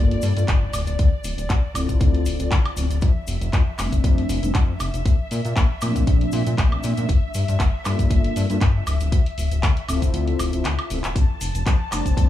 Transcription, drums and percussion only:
0.11 closed hi-hat
0.22 open hi-hat, cabasa
0.37 closed hi-hat, cabasa
0.48 kick, clap, closed hi-hat, cabasa
0.73 open hi-hat, cabasa, high woodblock
0.87 closed hi-hat, cabasa
0.99 kick, closed hi-hat, cabasa
1.24 open hi-hat, cabasa
1.38 closed hi-hat, cabasa
1.49 kick, clap, closed hi-hat, cabasa
1.75 open hi-hat, cabasa, high woodblock
1.89 kick, closed hi-hat, cabasa
2.00 kick, closed hi-hat, cabasa
2.14 closed hi-hat
2.26 open hi-hat, cabasa
2.40 closed hi-hat, cabasa
2.51 kick, clap, closed hi-hat, cabasa
2.66 closed hi-hat, high woodblock
2.77 open hi-hat, cabasa
2.91 closed hi-hat, cabasa
3.01 kick, closed hi-hat, cabasa
3.27 open hi-hat, cabasa
3.41 closed hi-hat, cabasa
3.53 kick, clap, closed hi-hat, cabasa
3.79 clap, open hi-hat, cabasa, high woodblock
3.92 kick, closed hi-hat, cabasa
4.04 kick, closed hi-hat, cabasa
4.18 closed hi-hat
4.29 open hi-hat, cabasa
4.43 closed hi-hat, cabasa
4.55 kick, clap, closed hi-hat, cabasa
4.80 open hi-hat, cabasa, high woodblock
4.94 closed hi-hat, cabasa
5.06 kick, closed hi-hat, cabasa
5.31 open hi-hat, cabasa
5.45 closed hi-hat, cabasa
5.56 kick, clap, closed hi-hat, cabasa
5.81 open hi-hat, cabasa, high woodblock
5.96 kick, closed hi-hat, cabasa
6.07 kick, closed hi-hat, cabasa
6.21 closed hi-hat
6.32 open hi-hat, cabasa
6.46 closed hi-hat, cabasa
6.58 kick, clap, closed hi-hat, cabasa
6.72 high woodblock
6.83 open hi-hat, cabasa
6.97 closed hi-hat, cabasa
7.09 kick, closed hi-hat, cabasa
7.34 open hi-hat, cabasa
7.48 closed hi-hat, cabasa
7.60 kick, clap, closed hi-hat, cabasa
7.85 clap, open hi-hat, cabasa, high woodblock
7.99 kick, closed hi-hat, cabasa
8.10 kick, closed hi-hat, cabasa
8.24 closed hi-hat
8.36 open hi-hat, cabasa
8.50 closed hi-hat, cabasa
8.61 kick, clap, closed hi-hat, cabasa
8.87 open hi-hat, cabasa, high woodblock
9.00 closed hi-hat, cabasa
9.12 kick, closed hi-hat, cabasa
9.26 closed hi-hat
9.38 open hi-hat, cabasa
9.51 closed hi-hat, cabasa
9.63 kick, clap, closed hi-hat, cabasa
9.77 closed hi-hat
9.88 open hi-hat, cabasa, high woodblock
10.02 kick, closed hi-hat, cabasa
10.14 closed hi-hat, cabasa
10.28 closed hi-hat
10.39 open hi-hat, cabasa, high woodblock
10.53 closed hi-hat, cabasa
10.64 clap, closed hi-hat, cabasa
10.79 closed hi-hat, high woodblock
10.90 open hi-hat, cabasa
11.04 clap, closed hi-hat, cabasa
11.16 kick, closed hi-hat, cabasa
11.41 open hi-hat, cabasa
11.55 closed hi-hat, cabasa
11.66 kick, clap, closed hi-hat, cabasa
11.92 clap, open hi-hat, cabasa, high woodblock
12.05 kick, closed hi-hat, cabasa
12.17 kick, closed hi-hat, cabasa

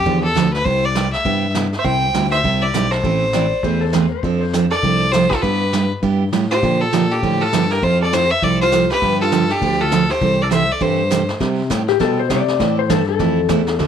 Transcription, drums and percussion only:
0.06 brush sweep, kick
0.36 snare, hi-hat pedal
0.54 snare
0.65 brush sweep, kick
0.95 snare, hi-hat pedal
1.13 snare
1.25 brush sweep, kick
1.55 snare, hi-hat pedal
1.73 snare
1.84 brush sweep, kick
2.14 snare, hi-hat pedal
2.32 snare
2.44 brush sweep, kick
2.74 snare, hi-hat pedal
2.92 snare
3.04 brush sweep, kick
3.33 snare, hi-hat pedal
3.63 brush sweep, kick
3.93 snare, hi-hat pedal
4.23 brush sweep, kick
4.53 snare, hi-hat pedal
4.71 snare
4.83 brush sweep, kick
5.13 snare, hi-hat pedal
5.31 kick, snare
5.43 brush sweep, kick
5.73 snare, hi-hat pedal
6.03 brush sweep, kick
6.32 snare, hi-hat pedal
6.50 snare
6.63 brush sweep, kick
6.93 snare, hi-hat pedal
7.11 snare
7.23 brush sweep, kick
7.53 snare, hi-hat pedal
7.70 snare
7.83 brush sweep, kick
8.13 snare, hi-hat pedal
8.42 brush sweep, kick
8.72 snare, hi-hat pedal
8.90 snare
9.02 brush sweep, kick
9.32 snare, hi-hat pedal
9.49 snare
9.61 brush sweep, kick
9.91 snare, hi-hat pedal
10.09 snare
10.21 brush sweep, kick
10.51 snare, hi-hat pedal
10.81 brush sweep, kick
11.11 snare, hi-hat pedal
11.29 snare
11.40 brush sweep, kick, snare
11.70 kick, snare, hi-hat pedal
11.88 snare
12.00 brush sweep, kick, snare
12.30 kick, snare, hi-hat pedal
12.48 snare
12.60 brush sweep, kick, snare
12.90 kick, snare, hi-hat pedal
13.19 brush sweep, kick, snare
13.49 kick, snare, hi-hat pedal
13.67 snare
13.79 brush sweep, kick, snare

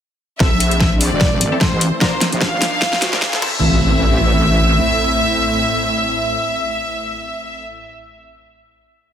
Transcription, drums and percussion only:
0.40 kick, snare
0.60 closed hi-hat
0.71 closed hi-hat
0.81 kick, snare
1.01 open hi-hat
1.21 kick, snare
1.41 closed hi-hat
1.61 kick, snare
1.81 closed hi-hat
2.01 kick, snare
2.21 snare, closed hi-hat
2.32 closed hi-hat
2.42 kick, snare
2.62 snare, open hi-hat
2.82 kick, snare
2.93 snare
3.02 snare, closed hi-hat
3.13 snare
3.22 kick, snare
3.33 snare
3.42 kick, crash

